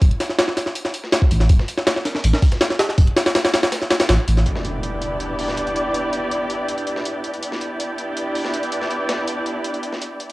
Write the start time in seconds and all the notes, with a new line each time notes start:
0.02 D1, kick, closed hi-hat, open hi-hat
0.11 closed hi-hat
0.20 snare, closed hi-hat, open hi-hat
0.29 snare
0.39 snare, closed hi-hat, open hi-hat
0.48 snare
0.57 snare, closed hi-hat, open hi-hat
0.66 snare
0.75 closed hi-hat, open hi-hat
0.85 snare, closed hi-hat
0.94 closed hi-hat, open hi-hat
1.04 snare
1.12 snare, closed hi-hat, open hi-hat
1.22 kick
1.31 A1, closed hi-hat, open hi-hat
1.40 snare, closed hi-hat
1.49 D1, kick, closed hi-hat, open hi-hat
1.59 snare
1.68 closed hi-hat, open hi-hat
1.78 snare
1.87 snare, closed hi-hat, open hi-hat
1.96 snare
2.05 snare, closed hi-hat, open hi-hat
2.15 snare
2.24 A1, closed hi-hat, open hi-hat
2.33 snare
2.42 kick, open hi-hat
2.52 snare, closed hi-hat
2.61 snare, closed hi-hat, open hi-hat
2.70 snare, closed hi-hat
2.79 snare, closed hi-hat, open hi-hat
2.89 snare
2.98 D1, kick, closed hi-hat, open hi-hat
3.07 closed hi-hat
3.17 snare, closed hi-hat, open hi-hat
3.26 snare, open hi-hat
3.35 snare, closed hi-hat, open hi-hat
3.45 snare, open hi-hat
3.54 snare, closed hi-hat, open hi-hat
3.63 snare, open hi-hat
3.72 snare, closed hi-hat, open hi-hat
3.81 snare, closed hi-hat
3.90 snare, closed hi-hat, open hi-hat
4.00 snare, closed hi-hat, open hi-hat
4.09 A1, snare, closed hi-hat, open hi-hat
4.28 A1, closed hi-hat, open hi-hat
4.37 snare, closed hi-hat
4.46 B3 D4 E4 G4 D5, closed hi-hat, impact
4.56 snare
4.65 closed hi-hat
4.83 closed hi-hat
5.02 closed hi-hat
5.20 closed hi-hat
5.39 open hi-hat
5.48 snare
5.57 closed hi-hat
5.67 closed hi-hat
5.76 closed hi-hat
5.94 closed hi-hat
6.13 closed hi-hat
6.31 closed hi-hat
6.50 closed hi-hat
6.68 closed hi-hat
6.78 closed hi-hat
6.87 closed hi-hat
6.96 snare
7.05 closed hi-hat
7.24 closed hi-hat
7.34 closed hi-hat
7.43 B3 D4 E4 G4 D5, closed hi-hat
7.52 snare
7.61 closed hi-hat
7.80 closed hi-hat
7.98 closed hi-hat
8.17 closed hi-hat
8.35 open hi-hat
8.45 snare
8.54 closed hi-hat
8.63 closed hi-hat
8.72 closed hi-hat
8.81 snare
8.90 closed hi-hat
9.09 snare, closed hi-hat
9.28 closed hi-hat
9.46 closed hi-hat
9.64 closed hi-hat
9.74 closed hi-hat
9.83 closed hi-hat
9.93 snare
10.02 closed hi-hat
10.20 closed hi-hat